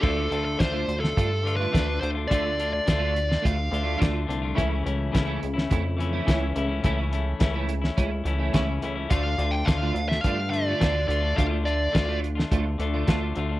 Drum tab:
CC |x---------------|----------------|----------------|----------------|
HH |--x-x-x-x-x-x-x-|x-x-x-x-x-x-x-x-|x-x-x-x-x-x-x-x-|x-x-x-x-x-x-x-x-|
SD |----o--o----o---|----o--o----o---|----o--o----o---|----o--o----o---|
BD |o---o---o---o---|o---o---o---o---|o---o---o---o---|o---o---o---o---|

CC |----------------|----------------|
HH |x-x-x-x-x-x-x-x-|x-x-x-x-x-x-x-x-|
SD |----o--o----o---|----o--o----o---|
BD |o---o---o---o---|o---o---o---o---|